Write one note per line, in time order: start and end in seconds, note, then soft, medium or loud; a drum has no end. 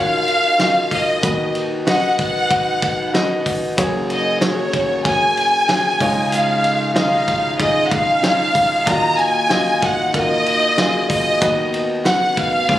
0.00 1.19 D#2 medium
0.00 1.19 D#3 medium
0.00 3.74 D#4 medium
0.00 0.58 F4 medium
0.00 0.60 F#4 medium
0.00 1.20 A#4 medium
0.00 1.25 C#5 medium
0.00 0.60 D#5 medium
0.00 1.20 D#5 medium
0.00 0.92 F5 loud
0.28 ride soft
0.58 1.07 F4 medium
0.58 1.07 F#4 medium
0.58 1.08 D#5 medium
0.58 snare medium
0.58 ride medium
0.91 1.55 D#5 medium
0.91 kick medium
0.91 open hi-hat medium
0.91 ride soft
1.22 3.74 D#2 medium
1.22 3.74 D#3 medium
1.22 1.71 F#4 medium
1.22 1.71 B4 medium
1.22 3.75 B4 medium
1.22 1.71 D#5 medium
1.22 5.97 F#5 medium
1.22 kick loud
1.22 hi-hat pedal medium
1.22 ride medium
1.55 ride medium
1.86 2.34 F#4 medium
1.86 2.35 B4 medium
1.86 2.35 D#5 medium
1.86 2.17 F#5 loud
1.86 snare loud
1.86 ride medium
2.19 3.42 F#5 loud
2.19 kick medium
2.19 ride medium
2.50 2.98 F#4 medium
2.50 2.98 B4 medium
2.50 2.99 D#5 medium
2.50 kick medium
2.50 ride medium
2.82 kick medium
2.82 ride medium
3.13 3.62 F#4 medium
3.13 3.62 B4 medium
3.13 3.62 D#5 medium
3.13 snare medium
3.13 ride medium
3.46 kick medium
3.46 open hi-hat medium
3.46 ride soft
3.77 5.97 F#1 medium
3.77 5.97 F#2 medium
3.77 8.83 C#4 medium
3.77 4.25 F#4 medium
3.77 4.26 G#4 medium
3.77 8.83 G#4 medium
3.77 4.26 C#5 loud
3.77 kick loud
3.77 hi-hat pedal medium
3.77 ride medium
4.10 4.40 D#5 medium
4.10 ride medium
4.41 4.89 F#4 medium
4.41 4.90 G#4 medium
4.41 5.01 C#5 medium
4.41 4.90 C#5 medium
4.41 snare loud
4.41 ride medium
4.73 kick medium
4.73 ride medium
5.05 5.53 F#4 medium
5.05 5.53 G#4 medium
5.05 5.54 C#5 medium
5.05 6.33 G#5 loud
5.05 kick medium
5.05 ride medium
5.37 ride soft
5.68 6.00 F#4 medium
5.68 6.01 G#4 medium
5.68 6.00 C#5 medium
5.68 snare medium
5.68 ride medium
6.00 8.51 C#2 medium
6.00 8.51 C#3 medium
6.00 6.77 D#4 medium
6.00 11.38 D#4 medium
6.00 6.77 F4 medium
6.00 6.77 C#5 loud
6.00 12.66 D#5 medium
6.00 kick medium
6.00 open hi-hat medium
6.00 ride soft
6.32 6.94 F5 medium
6.32 hi-hat pedal medium
6.32 ride medium
6.64 ride medium
6.94 7.43 D#4 medium
6.94 7.44 F4 medium
6.94 7.44 D#5 medium
6.94 7.55 F5 medium
6.94 snare loud
6.94 ride medium
7.28 kick medium
7.28 ride medium
7.59 8.07 D#4 medium
7.59 8.08 F4 medium
7.59 8.08 G#4 medium
7.59 7.84 D#5 medium
7.59 kick medium
7.59 ride medium
7.85 7.92 F#5 medium
7.90 8.86 F5 loud
7.90 kick medium
7.90 ride soft
8.22 8.71 D#4 medium
8.22 8.71 F4 medium
8.22 8.72 C#5 medium
8.22 snare medium
8.22 ride medium
8.55 kick medium
8.55 open hi-hat medium
8.55 ride soft
8.86 11.37 D#2 medium
8.86 11.37 D#3 medium
8.86 11.39 A#3 medium
8.86 9.34 F4 medium
8.86 9.35 F#4 medium
8.86 8.94 D5 medium
8.86 9.19 A#5 loud
8.86 kick loud
8.86 hi-hat pedal medium
8.86 ride medium
8.94 9.38 D#5 medium
9.19 9.82 G#5 loud
9.19 ride medium
9.49 9.98 F4 medium
9.49 9.99 F#4 medium
9.49 9.99 D#5 medium
9.49 snare loud
9.49 ride medium
9.82 10.15 F#5 loud
9.82 kick medium
9.82 ride medium
10.13 10.62 F4 medium
10.13 10.62 F#4 medium
10.13 10.63 A#4 medium
10.13 11.09 D#5 loud
10.13 kick medium
10.13 ride medium
10.46 ride medium
10.77 11.26 F4 medium
10.77 11.26 F#4 medium
10.77 11.27 G#4 medium
10.77 snare loud
10.77 ride medium
11.10 11.70 D#5 medium
11.10 kick medium
11.10 open hi-hat medium
11.10 ride soft
11.41 12.65 D#2 medium
11.41 12.65 D#3 medium
11.41 12.68 B3 medium
11.41 12.68 D#4 medium
11.41 11.89 F#4 medium
11.41 11.90 B4 medium
11.41 11.90 D#5 medium
11.41 kick loud
11.41 hi-hat pedal medium
11.41 ride medium
11.74 ride medium
12.04 12.53 F#4 medium
12.04 12.53 B4 medium
12.04 12.35 F#5 loud
12.04 12.54 F#5 medium
12.04 snare loud
12.04 ride medium
12.37 12.79 F5 loud
12.37 kick medium
12.37 ride medium
12.68 12.79 C#2 medium
12.68 12.79 C#3 medium
12.68 12.79 C#4 medium
12.68 12.79 F4 medium
12.68 12.79 G#4 medium
12.68 12.79 C#5 medium
12.68 12.79 F5 medium
12.68 kick medium
12.68 high tom soft